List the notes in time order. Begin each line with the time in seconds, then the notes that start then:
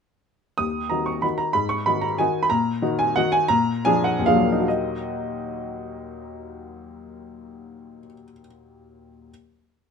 0.58 D#2 D#6
0.90 D#3 D#4 F#4 A#5
1.06 C#6
1.22 D#3 D#4 F#4 B5
1.38 A#5
1.53 G#2 B5
1.69 C#6
1.86 D#3 D#4 F#4 B5
2.01 A#5
2.18 D#3 D#4 F#4 G#5
2.43 B5
2.50 A#2 A#5
2.82 D#3 D#4 F#4
2.99 G#5
3.16 D#3 D#4 F#4 F#5
3.32 G#5
3.48 A#2 A#5
3.85 F3 D4 G#4 G#5
4.04 F#5
4.19 D#2
4.26 A#2 F3 D4 G#4 F5
4.36 F#3
4.44 A#3
4.52 D#4
4.61 F#4
4.68 D#5